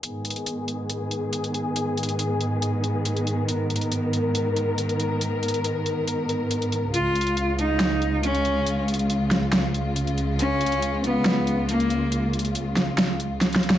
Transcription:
0.03 string section G#2 D#3 B3 G#4, closed hi-hat
0.25 closed hi-hat
0.30 closed hi-hat
0.36 closed hi-hat
0.46 closed hi-hat
0.68 closed hi-hat
0.90 closed hi-hat
1.11 closed hi-hat
1.33 closed hi-hat
1.44 closed hi-hat
1.54 closed hi-hat
1.76 closed hi-hat
1.97 closed hi-hat
2.03 closed hi-hat
2.09 closed hi-hat
2.19 closed hi-hat
2.41 closed hi-hat
2.62 closed hi-hat
2.84 closed hi-hat
3.05 closed hi-hat
3.17 closed hi-hat
3.27 closed hi-hat
3.48 string section A#4, closed hi-hat
3.70 closed hi-hat
3.76 closed hi-hat
3.81 closed hi-hat
3.92 closed hi-hat
4.13 closed hi-hat
4.35 closed hi-hat
4.56 closed hi-hat
4.78 closed hi-hat
4.89 closed hi-hat
5.00 closed hi-hat
5.21 closed hi-hat
5.43 closed hi-hat
5.48 closed hi-hat
5.54 closed hi-hat
5.64 closed hi-hat
5.86 closed hi-hat
6.07 closed hi-hat
6.29 closed hi-hat
6.51 closed hi-hat
6.62 closed hi-hat
6.72 closed hi-hat
6.94 string section C#2 C#3 G#3 F4, cello F4, closed hi-hat
7.15 closed hi-hat
7.21 closed hi-hat
7.27 closed hi-hat
7.37 closed hi-hat
7.59 cello D#4, closed hi-hat
7.80 snare, closed hi-hat
8.02 closed hi-hat
8.23 cello C#4, closed hi-hat
8.35 closed hi-hat
8.45 closed hi-hat
8.66 closed hi-hat
8.88 closed hi-hat
8.94 closed hi-hat
8.99 closed hi-hat
9.10 closed hi-hat
9.31 snare, closed hi-hat
9.53 snare, closed hi-hat
9.74 closed hi-hat
9.96 closed hi-hat
10.07 closed hi-hat
10.18 closed hi-hat
10.39 cello C#4, closed hi-hat
10.61 closed hi-hat
10.66 closed hi-hat
10.72 closed hi-hat
10.82 closed hi-hat
11.04 cello B3, closed hi-hat
11.26 snare, closed hi-hat
11.47 closed hi-hat
11.69 cello A#3, closed hi-hat
11.80 closed hi-hat
11.90 closed hi-hat
12.12 closed hi-hat
12.33 closed hi-hat
12.39 closed hi-hat
12.45 closed hi-hat
12.55 closed hi-hat
12.77 snare, closed hi-hat
12.98 snare, closed hi-hat
13.20 closed hi-hat
13.41 snare, closed hi-hat
13.53 snare, closed hi-hat
13.63 closed hi-hat
13.70 snare

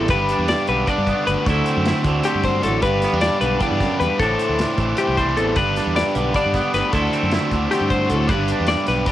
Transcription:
Already playing: fingered electric bass A1, clean electric guitar G3 D4 A4
0.08 fingered electric bass G1, clean electric guitar G2 B4, overdriven electric guitar G3 B3 D4 G4 B4, kick, closed hi-hat
0.29 clean electric guitar D4, closed hi-hat
0.38 fingered electric bass E2
0.48 clean electric guitar D5, snare, closed hi-hat
0.67 fingered electric bass B1, clean electric guitar D3 B4, closed hi-hat
0.86 overdriven electric guitar G3 B3 D4 G4 B4, clean electric guitar D4 D5, kick, closed hi-hat
0.98 fingered electric bass G2
1.07 clean electric guitar B3, kick, closed hi-hat
1.27 fingered electric bass G1, clean electric guitar D2 B4, closed hi-hat
1.46 fingered electric bass D2, clean electric guitar D2 E4 A4, overdriven electric guitar D3 F#3 A3 D4 F#4 C5, kick, closed hi-hat
1.66 clean electric guitar C4, closed hi-hat
1.77 fingered electric bass F#2
1.85 clean electric guitar E4, snare, closed hi-hat
2.04 fingered electric bass D2, clean electric guitar D3, kick, closed hi-hat
2.24 overdriven electric guitar D3 F#3 A3 D4 F#4 C5, clean electric guitar C4 G4, closed hi-hat
2.35 fingered electric bass G2
2.43 clean electric guitar C5, kick, closed hi-hat
2.63 fingered electric bass A1, clean electric guitar A2 A4, closed hi-hat
2.81 fingered electric bass G1, clean electric guitar G2 B4, overdriven electric guitar G3 B3 D4 G4 B4, kick, closed hi-hat
3.02 clean electric guitar B3, snare, closed hi-hat
3.13 fingered electric bass E2, clean electric guitar D4
3.21 clean electric guitar D5, snare, closed hi-hat
3.41 fingered electric bass B1, clean electric guitar D3 B4, closed hi-hat
3.59 clean electric guitar E2 D5, overdriven electric guitar G3 B3 D4 G4 B4, kick, closed hi-hat
3.71 fingered electric bass G2
3.80 clean electric guitar F#2, kick, snare, closed hi-hat
4.00 fingered electric bass E2, clean electric guitar G2 B4, closed hi-hat
4.18 fingered electric bass A1, overdriven electric guitar A2 E3 A3 C4 E4 C5, clean electric guitar A2 A4, kick, closed hi-hat
4.22 clean electric guitar D4
4.39 closed hi-hat
4.49 fingered electric bass D2
4.59 clean electric guitar D4, snare, closed hi-hat
4.78 fingered electric bass A1, clean electric guitar E3, kick, closed hi-hat
4.97 overdriven electric guitar A2 E3 A3 C4 E4 C5, clean electric guitar G4, closed hi-hat
5.08 fingered electric bass C2
5.17 clean electric guitar G3 C5, kick, closed hi-hat
5.37 fingered electric bass A1, clean electric guitar E2 A4, closed hi-hat
5.56 fingered electric bass G1, clean electric guitar G2 B4, overdriven electric guitar G3 B3 D4 G4 B4, kick, closed hi-hat
5.76 clean electric guitar D4, snare, closed hi-hat
5.86 fingered electric bass E2
5.96 clean electric guitar D5, snare, closed hi-hat
6.15 fingered electric bass B1, clean electric guitar D3 B4, closed hi-hat
6.34 overdriven electric guitar G3 B3 D4 G4 B4, clean electric guitar D4 D5, kick, snare, closed hi-hat
6.45 fingered electric bass G2
6.54 clean electric guitar B3, kick, snare, closed hi-hat
6.74 fingered electric bass G1, clean electric guitar D2 B4, snare, closed hi-hat
6.92 fingered electric bass D2, clean electric guitar D2 E4 A4, overdriven electric guitar D3 F#3 A3 D4 F#4 C5, kick, closed hi-hat
7.13 clean electric guitar C4, closed hi-hat
7.23 fingered electric bass F#2
7.32 clean electric guitar E4, snare, closed hi-hat
7.51 fingered electric bass D2, clean electric guitar D3, kick, closed hi-hat
7.70 overdriven electric guitar D3 F#3 A3 D4 F#4 C5, clean electric guitar C4 G4, snare, closed hi-hat
7.81 fingered electric bass G2
7.90 clean electric guitar C5, kick, closed hi-hat
8.10 fingered electric bass D2, clean electric guitar A2 A4, closed hi-hat
8.28 fingered electric bass G1, clean electric guitar G2 B4, overdriven electric guitar G3 B3 D4 G4 B4, kick, closed hi-hat
8.48 clean electric guitar D4, closed hi-hat
8.60 fingered electric bass E2
8.67 clean electric guitar D5, snare, closed hi-hat
8.87 fingered electric bass B1, clean electric guitar B4, snare, closed hi-hat
9.06 overdriven electric guitar D4 G4 B4, clean electric guitar D5, kick, closed hi-hat

